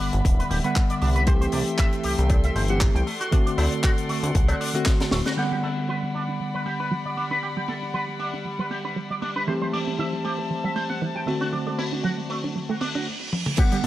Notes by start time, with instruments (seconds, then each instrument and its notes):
Already playing: tine electric piano D3 G3 B3 F#5, string section G3 D5 E5 B5
0.00 analog synth bass G1, open hi-hat
0.13 analog synth bass G1, closed hi-hat
0.25 analog synth bass D1, kick, closed hi-hat
0.39 clean electric guitar B4, closed hi-hat
0.50 analog synth bass D1, clean electric guitar G4, open hi-hat
0.64 tine electric piano D3 G3 B3 F#5, clean electric guitar B4, closed hi-hat
0.75 kick, clap, closed hi-hat
0.90 clean electric guitar D5, closed hi-hat
1.02 analog synth bass C2, clean electric guitar D4, open hi-hat
1.16 clean electric guitar B4, closed hi-hat
1.27 tine electric piano E3 A3 C4 G4, string section A4 G5 C6, clean electric guitar C5, kick, closed hi-hat
1.41 clean electric guitar C5, closed hi-hat
1.52 analog synth bass C2, clean electric guitar D5, open hi-hat
1.68 closed hi-hat
1.78 clean electric guitar E5, kick, clap, closed hi-hat
1.93 closed hi-hat
2.04 analog synth bass C2, clean electric guitar G4, open hi-hat
2.18 analog synth bass C2, closed hi-hat
2.30 kick, closed hi-hat, cowbell
2.44 clean electric guitar E5, closed hi-hat
2.55 analog synth bass G1, clean electric guitar C5, open hi-hat
2.68 tine electric piano E3 A3 C4 G4, clean electric guitar F#5, closed hi-hat
2.80 kick, clap, closed hi-hat
2.95 analog synth bass C2, clean electric guitar G5, closed hi-hat
3.07 clean electric guitar A3, string section A4 D5 F#5, open hi-hat
3.21 clean electric guitar F#4, closed hi-hat
3.32 tine electric piano D3 A3 C4 F#4, clean electric guitar D4, kick, closed hi-hat
3.46 clean electric guitar D4, closed hi-hat
3.58 analog synth bass D2, clean electric guitar E4, open hi-hat, cowbell
3.72 closed hi-hat
3.83 clean electric guitar F#4, kick, clap, closed hi-hat
3.98 closed hi-hat
4.09 analog synth bass D2, clean electric guitar A3, open hi-hat
4.23 analog synth bass D2, closed hi-hat
4.35 analog synth bass C2, kick, closed hi-hat
4.48 clean electric guitar F#4, closed hi-hat, cowbell
4.61 clean electric guitar D4, open hi-hat
4.74 tine electric piano D3 A3 C4 F#4, clean electric guitar F#4, closed hi-hat
4.85 kick, snare, clap, closed hi-hat
5.00 clean electric guitar A4, snare, closed hi-hat
5.11 analog synth bass D1, clean electric guitar A3, snare, open hi-hat
5.26 clean electric guitar F#4, snare, closed hi-hat
5.37 tine electric piano D3 G3 B3 F#5, synth arpeggio sound F#3, string section G3 D5 F#5 B5, clean electric guitar G4, crash
5.52 synth arpeggio sound G3, clean electric guitar G4
5.63 synth arpeggio sound B3, clean electric guitar A4, open hi-hat
5.77 synth arpeggio sound D4
5.89 synth arpeggio sound F#3, clean electric guitar B4
6.03 synth arpeggio sound G3
6.15 synth arpeggio sound B3, clean electric guitar D4, open hi-hat
6.28 synth arpeggio sound D4
6.40 synth arpeggio sound F#3
6.54 synth arpeggio sound G3, clean electric guitar B4
6.66 synth arpeggio sound B3, clean electric guitar G4, open hi-hat
6.80 synth arpeggio sound D4, clean electric guitar B4
6.91 synth arpeggio sound F#3
7.05 synth arpeggio sound G3, clean electric guitar D5
7.17 synth arpeggio sound B3, clean electric guitar D4, open hi-hat
7.31 synth arpeggio sound D4, clean electric guitar B4
7.43 synth arpeggio sound F#3, clean electric guitar G4
7.57 synth arpeggio sound G3, clean electric guitar G4
7.68 synth arpeggio sound B3, clean electric guitar A4, open hi-hat
7.82 synth arpeggio sound D4
7.94 synth arpeggio sound F#3, clean electric guitar B4
8.08 synth arpeggio sound G3
8.19 synth arpeggio sound B3, clean electric guitar D4, open hi-hat
8.34 synth arpeggio sound D4
8.45 synth arpeggio sound F#3
8.59 synth arpeggio sound G3, clean electric guitar B4
8.71 synth arpeggio sound B3, clean electric guitar G4, open hi-hat
8.85 synth arpeggio sound D4, clean electric guitar B4
8.96 synth arpeggio sound F#3
9.10 synth arpeggio sound G3, clean electric guitar D5
9.22 synth arpeggio sound B3, clean electric guitar D4, open hi-hat
9.36 synth arpeggio sound D4, clean electric guitar B4
9.47 tine electric piano E3 A3 C4 G4, synth arpeggio sound E3, string section C5 E5 A5, clean electric guitar C5
9.62 synth arpeggio sound G3, clean electric guitar C5
9.73 synth arpeggio sound A3, clean electric guitar D5, open hi-hat
9.87 synth arpeggio sound C4
9.99 synth arpeggio sound E3, clean electric guitar E5
10.13 synth arpeggio sound G3
10.24 synth arpeggio sound A3, clean electric guitar G4, open hi-hat
10.39 synth arpeggio sound C4
10.50 synth arpeggio sound E3
10.64 synth arpeggio sound G3, clean electric guitar E5
10.76 synth arpeggio sound A3, clean electric guitar C5, open hi-hat
10.90 synth arpeggio sound C4, clean electric guitar F#5
11.02 synth arpeggio sound E3
11.15 synth arpeggio sound G3, clean electric guitar G5
11.26 tine electric piano D3 A3 C4 F#4, clean electric guitar A3, synth arpeggio sound C4, string section F#4 D5, open hi-hat
11.41 synth arpeggio sound D4, clean electric guitar F#4
11.53 synth arpeggio sound F#3, clean electric guitar D4
11.67 synth arpeggio sound A3, clean electric guitar D4
11.78 synth arpeggio sound C4, clean electric guitar E4, open hi-hat
11.93 synth arpeggio sound D4
12.04 synth arpeggio sound F#3, clean electric guitar F#4
12.18 synth arpeggio sound A3
12.30 clean electric guitar A3, synth arpeggio sound C4, open hi-hat
12.44 synth arpeggio sound D4
12.55 synth arpeggio sound F#3, reverse cymbal
12.69 synth arpeggio sound A3, clean electric guitar F#4
12.81 synth arpeggio sound C4, clean electric guitar D4, open hi-hat
12.95 synth arpeggio sound D4, clean electric guitar F#4
13.33 high tom
13.46 mid tom
13.57 tine electric piano D3 G3 B3 F#5, synth arpeggio sound F#3, clean electric guitar G4, string section B4 D5, kick, closed hi-hat, crash
13.72 synth arpeggio sound G3, clean electric guitar G4, closed hi-hat
13.84 analog synth bass G1, synth arpeggio sound B3, open hi-hat